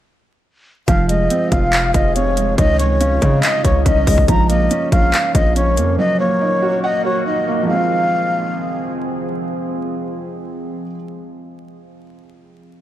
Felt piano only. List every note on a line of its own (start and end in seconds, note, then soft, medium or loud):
0.88 1.94 F3 loud
1.09 2.15 G#3 medium
1.30 2.37 C4 medium
1.52 1.93 F4 medium
1.73 2.58 F5 loud
1.94 2.58 F4 medium
2.16 2.58 C3 medium
2.37 2.58 G#3 medium
2.58 3.65 D#3 medium
2.79 3.86 G#3 medium
3.01 3.84 C#4 medium
3.22 3.63 D#4 medium
3.43 4.28 D#5 loud
3.64 4.28 D#4 medium
3.85 4.28 C#4 medium
4.08 4.29 G#3 medium
4.28 5.35 F3 loud
4.49 5.56 A#3 medium
4.71 5.54 C#4 loud
4.92 5.33 F4 medium
5.13 5.98 F5 loud
5.35 5.99 F4 medium
5.56 5.98 C#4 medium
5.77 5.99 A#3 medium
5.98 7.05 F#3 medium
6.20 7.26 A#3 medium
6.41 7.24 D#4 medium
6.62 7.03 F#4 medium
6.84 7.69 F#5 loud
7.05 7.69 F#4 medium
7.26 7.69 D#4 medium
7.48 7.69 A#3 medium
7.63 10.83 F3 medium
7.67 10.87 G#3 medium
7.71 10.91 C4 medium
7.71 10.95 F4 loud